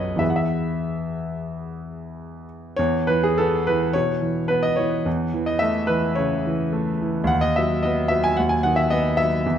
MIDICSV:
0, 0, Header, 1, 2, 480
1, 0, Start_track
1, 0, Key_signature, 4, "major"
1, 0, Tempo, 644468
1, 152, Time_signature, 4, 2, 24, 8
1, 2072, Tempo, 600000
1, 2552, Tempo, 558140
1, 5912, Tempo, 539084
1, 7956, End_track
2, 0, Start_track
2, 0, Title_t, "Grand piano"
2, 0, Program_c, 0, 0
2, 0, Control_c, 0, 64, 127
2, 0, Note_on_c, 0, 35, 46
2, 0, Note_on_c, 0, 42, 41
2, 0, Note_on_c, 0, 54, 35
2, 0, Note_on_c, 0, 59, 35
2, 0, Note_on_c, 0, 69, 37
2, 0, Note_on_c, 0, 71, 73
2, 0, Note_on_c, 0, 73, 61
2, 0, Note_on_c, 0, 75, 61
2, 118, Note_on_c, 0, 40, 46
2, 124, Note_off_c, 0, 35, 0
2, 125, Note_on_c, 0, 52, 32
2, 139, Note_off_c, 0, 59, 0
2, 139, Note_on_c, 0, 59, 35
2, 141, Note_on_c, 0, 76, 66
2, 144, Note_on_c, 0, 68, 35
2, 145, Note_off_c, 0, 75, 0
2, 151, Note_off_c, 0, 54, 0
2, 166, Control_c, 0, 64, 0
2, 168, Note_off_c, 0, 73, 0
2, 171, Note_off_c, 0, 42, 0
2, 172, Note_off_c, 0, 69, 0
2, 173, Note_off_c, 0, 71, 0
2, 207, Note_off_c, 0, 76, 0
2, 221, Note_on_c, 0, 78, 55
2, 267, Note_on_c, 0, 76, 64
2, 278, Note_off_c, 0, 78, 0
2, 318, Control_c, 0, 64, 127
2, 1827, Note_off_c, 0, 76, 0
2, 2025, Note_off_c, 0, 40, 0
2, 2029, Note_off_c, 0, 52, 0
2, 2036, Note_off_c, 0, 59, 0
2, 2038, Note_off_c, 0, 68, 0
2, 2059, Note_on_c, 0, 73, 91
2, 2077, Note_on_c, 0, 40, 65
2, 2086, Control_c, 0, 64, 0
2, 2206, Control_c, 0, 64, 127
2, 2304, Note_on_c, 0, 71, 79
2, 2309, Note_off_c, 0, 73, 0
2, 2320, Note_on_c, 0, 52, 50
2, 2429, Note_off_c, 0, 71, 0
2, 2434, Note_on_c, 0, 68, 78
2, 2548, Note_on_c, 0, 69, 76
2, 2551, Note_off_c, 0, 68, 0
2, 2568, Note_on_c, 0, 59, 49
2, 2702, Note_off_c, 0, 52, 0
2, 2794, Note_off_c, 0, 69, 0
2, 2799, Note_on_c, 0, 71, 79
2, 2815, Note_on_c, 0, 52, 49
2, 2948, Note_off_c, 0, 59, 0
2, 3008, Note_off_c, 0, 40, 0
2, 3027, Note_on_c, 0, 73, 85
2, 3036, Note_off_c, 0, 71, 0
2, 3045, Note_on_c, 0, 47, 45
2, 3050, Control_c, 0, 64, 0
2, 3163, Control_c, 0, 64, 127
2, 3186, Note_off_c, 0, 52, 0
2, 3267, Note_on_c, 0, 52, 49
2, 3419, Note_off_c, 0, 47, 0
2, 3497, Note_on_c, 0, 71, 80
2, 3506, Note_off_c, 0, 73, 0
2, 3518, Note_on_c, 0, 59, 50
2, 3622, Note_on_c, 0, 75, 79
2, 3625, Note_off_c, 0, 71, 0
2, 3654, Note_off_c, 0, 52, 0
2, 3737, Note_on_c, 0, 73, 74
2, 3748, Note_off_c, 0, 75, 0
2, 3758, Note_on_c, 0, 52, 47
2, 3903, Note_off_c, 0, 59, 0
2, 3992, Note_on_c, 0, 40, 61
2, 3996, Note_off_c, 0, 52, 0
2, 4012, Control_c, 0, 64, 0
2, 4158, Control_c, 0, 64, 127
2, 4233, Note_on_c, 0, 52, 47
2, 4341, Note_off_c, 0, 73, 0
2, 4341, Note_on_c, 0, 75, 75
2, 4451, Note_on_c, 0, 76, 82
2, 4465, Note_off_c, 0, 75, 0
2, 4474, Note_on_c, 0, 57, 48
2, 4614, Note_off_c, 0, 52, 0
2, 4692, Note_on_c, 0, 71, 82
2, 4701, Note_off_c, 0, 76, 0
2, 4712, Note_on_c, 0, 52, 46
2, 4858, Note_off_c, 0, 57, 0
2, 4922, Note_off_c, 0, 40, 0
2, 4936, Note_on_c, 0, 73, 72
2, 4943, Note_off_c, 0, 71, 0
2, 4954, Note_on_c, 0, 49, 45
2, 5098, Note_off_c, 0, 52, 0
2, 5199, Note_on_c, 0, 52, 47
2, 5336, Note_off_c, 0, 49, 0
2, 5426, Note_on_c, 0, 57, 51
2, 5577, Note_off_c, 0, 52, 0
2, 5675, Note_on_c, 0, 52, 44
2, 5813, Note_off_c, 0, 57, 0
2, 5869, Note_on_c, 0, 39, 67
2, 5897, Note_on_c, 0, 78, 90
2, 5904, Note_off_c, 0, 73, 0
2, 5915, Note_off_c, 0, 52, 0
2, 5929, Control_c, 0, 64, 0
2, 6021, Note_on_c, 0, 75, 84
2, 6029, Note_off_c, 0, 78, 0
2, 6088, Control_c, 0, 64, 127
2, 6151, Note_off_c, 0, 75, 0
2, 6154, Note_on_c, 0, 76, 83
2, 6173, Note_on_c, 0, 54, 47
2, 6390, Note_on_c, 0, 75, 72
2, 6397, Note_off_c, 0, 76, 0
2, 6414, Note_on_c, 0, 59, 45
2, 6550, Note_off_c, 0, 54, 0
2, 6620, Note_on_c, 0, 76, 87
2, 6633, Note_off_c, 0, 75, 0
2, 6645, Note_on_c, 0, 54, 50
2, 6748, Note_off_c, 0, 76, 0
2, 6755, Note_on_c, 0, 80, 86
2, 6788, Note_off_c, 0, 59, 0
2, 6826, Note_off_c, 0, 39, 0
2, 6871, Note_on_c, 0, 78, 81
2, 6877, Note_off_c, 0, 80, 0
2, 6890, Note_on_c, 0, 39, 51
2, 6893, Control_c, 0, 64, 0
2, 6984, Note_on_c, 0, 80, 75
2, 6995, Note_off_c, 0, 78, 0
2, 7025, Note_off_c, 0, 54, 0
2, 7031, Control_c, 0, 64, 127
2, 7108, Note_on_c, 0, 78, 89
2, 7110, Note_off_c, 0, 80, 0
2, 7128, Note_on_c, 0, 51, 51
2, 7222, Note_on_c, 0, 76, 77
2, 7232, Note_off_c, 0, 78, 0
2, 7349, Note_on_c, 0, 75, 81
2, 7350, Note_off_c, 0, 76, 0
2, 7367, Note_on_c, 0, 59, 47
2, 7506, Note_off_c, 0, 51, 0
2, 7588, Note_on_c, 0, 76, 85
2, 7593, Note_off_c, 0, 75, 0
2, 7615, Note_on_c, 0, 54, 40
2, 7745, Note_off_c, 0, 59, 0
2, 7812, Note_off_c, 0, 39, 0
2, 7843, Note_off_c, 0, 54, 0
2, 7845, Note_on_c, 0, 40, 57
2, 7851, Control_c, 0, 64, 0
2, 7956, Note_off_c, 0, 40, 0
2, 7956, Note_off_c, 0, 76, 0
2, 7956, End_track
0, 0, End_of_file